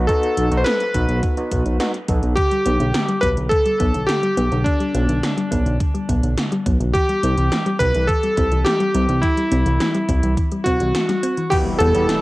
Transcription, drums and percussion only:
0.09 kick loud
0.09 closed hi-hat medium
0.23 closed hi-hat soft
0.37 closed hi-hat medium
0.52 closed hi-hat soft
0.66 snare loud
0.66 closed hi-hat medium
0.80 closed hi-hat soft
0.94 kick medium
0.94 closed hi-hat medium
1.09 closed hi-hat soft
1.23 kick loud
1.23 closed hi-hat medium
1.37 closed hi-hat soft
1.51 kick medium
1.51 closed hi-hat medium
1.66 closed hi-hat soft
1.80 snare loud
1.80 closed hi-hat medium
1.94 closed hi-hat soft
2.08 kick loud
2.08 closed hi-hat medium
2.23 closed hi-hat soft
2.37 kick loud
2.37 closed hi-hat medium
2.51 closed hi-hat soft
2.66 closed hi-hat medium
2.80 closed hi-hat soft
2.94 snare loud
2.94 closed hi-hat medium
3.09 closed hi-hat soft
3.23 kick medium
3.23 closed hi-hat medium
3.37 closed hi-hat soft
3.51 kick loud
3.51 closed hi-hat medium
3.66 closed hi-hat soft
3.80 kick loud
3.80 closed hi-hat medium
3.94 closed hi-hat soft
4.09 snare loud
4.09 closed hi-hat medium
4.23 closed hi-hat soft
4.37 closed hi-hat medium
4.52 closed hi-hat soft
4.66 kick loud
4.66 closed hi-hat medium
4.80 closed hi-hat soft
4.95 closed hi-hat medium
5.09 closed hi-hat soft
5.23 snare loud
5.23 closed hi-hat medium
5.38 closed hi-hat soft
5.52 kick medium
5.52 closed hi-hat medium
5.66 closed hi-hat soft
5.80 kick loud
5.80 closed hi-hat medium
5.95 closed hi-hat soft
6.09 kick medium
6.09 closed hi-hat medium
6.23 closed hi-hat soft
6.38 snare loud
6.38 closed hi-hat medium
6.52 closed hi-hat soft
6.66 kick loud
6.66 closed hi-hat medium
6.80 closed hi-hat soft
6.95 kick loud
6.95 closed hi-hat medium
7.09 closed hi-hat soft
7.23 closed hi-hat medium
7.37 closed hi-hat soft
7.52 snare loud
7.52 closed hi-hat medium
7.66 closed hi-hat soft
7.80 kick medium
7.80 closed hi-hat medium
7.95 closed hi-hat soft
8.09 kick loud
8.09 closed hi-hat medium
8.23 closed hi-hat soft
8.37 kick loud
8.37 closed hi-hat medium
8.52 closed hi-hat soft
8.66 snare loud
8.66 closed hi-hat medium
8.80 closed hi-hat soft
8.95 closed hi-hat medium
9.09 closed hi-hat soft
9.23 kick loud
9.23 closed hi-hat medium
9.37 closed hi-hat soft
9.52 closed hi-hat medium
9.66 closed hi-hat soft
9.80 snare loud
9.80 closed hi-hat medium
9.95 closed hi-hat soft
10.09 kick medium
10.09 closed hi-hat medium
10.23 closed hi-hat soft
10.37 kick loud
10.37 closed hi-hat medium
10.52 closed hi-hat soft
10.66 kick medium
10.66 closed hi-hat medium
10.80 closed hi-hat soft
10.95 snare loud
10.95 closed hi-hat medium
11.09 snare soft
11.09 closed hi-hat soft
11.23 closed hi-hat medium
11.37 closed hi-hat soft
11.52 kick loud
11.52 closed hi-hat medium
11.52 crash loud
11.80 closed hi-hat medium
11.95 closed hi-hat medium
12.09 snare loud
12.09 closed hi-hat medium

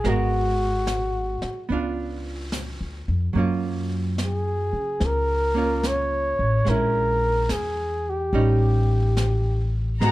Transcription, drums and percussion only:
0.05 brush sweep soft
0.05 snare soft
0.87 snare soft
0.87 hi-hat pedal soft
1.42 snare soft
1.70 brush sweep soft
2.52 snare soft
2.52 hi-hat pedal medium
3.35 brush sweep soft
4.18 snare soft
4.18 hi-hat pedal soft
5.00 brush sweep soft
5.00 snare soft
5.83 snare soft
5.83 hi-hat pedal soft
6.66 brush sweep soft
6.66 snare soft
7.49 snare soft
7.49 hi-hat pedal soft
8.33 brush sweep soft
9.17 snare soft
9.17 hi-hat pedal soft
10.01 brush sweep soft
10.01 snare soft

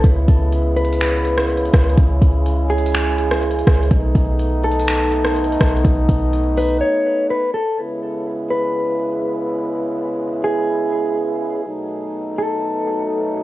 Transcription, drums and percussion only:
0.04 kick loud
0.04 closed hi-hat medium
0.28 kick medium
0.28 closed hi-hat medium
0.52 closed hi-hat medium
0.77 closed hi-hat soft
0.85 closed hi-hat medium
0.93 closed hi-hat medium
1.01 finger snap loud
1.01 closed hi-hat medium
1.25 closed hi-hat medium
1.38 cross-stick medium
1.49 closed hi-hat medium
1.57 closed hi-hat medium
1.65 closed hi-hat medium
1.73 kick loud
1.73 cross-stick medium
1.73 closed hi-hat medium
1.81 closed hi-hat medium
1.90 closed hi-hat medium
1.98 kick loud
1.98 closed hi-hat medium
2.22 kick medium
2.22 closed hi-hat medium
2.46 closed hi-hat medium
2.70 closed hi-hat soft
2.78 closed hi-hat medium
2.86 closed hi-hat medium
2.94 finger snap loud
2.94 closed hi-hat medium
3.18 closed hi-hat medium
3.31 cross-stick medium
3.43 closed hi-hat medium
3.51 closed hi-hat medium
3.59 closed hi-hat medium
3.67 kick loud
3.67 cross-stick medium
3.67 closed hi-hat medium
3.75 closed hi-hat medium
3.83 closed hi-hat medium
3.91 kick loud
3.91 closed hi-hat medium
4.15 kick medium
4.15 closed hi-hat medium
4.39 closed hi-hat medium
4.64 closed hi-hat soft
4.72 closed hi-hat medium
4.80 closed hi-hat medium
4.88 finger snap loud
4.88 closed hi-hat medium
5.12 closed hi-hat medium
5.25 cross-stick medium
5.36 closed hi-hat medium
5.44 closed hi-hat medium
5.52 closed hi-hat medium
5.60 kick loud
5.60 cross-stick medium
5.60 closed hi-hat medium
5.69 closed hi-hat medium
5.77 closed hi-hat medium
5.85 kick loud
5.85 closed hi-hat medium
6.09 kick medium
6.09 closed hi-hat medium
6.33 closed hi-hat medium
6.57 open hi-hat medium

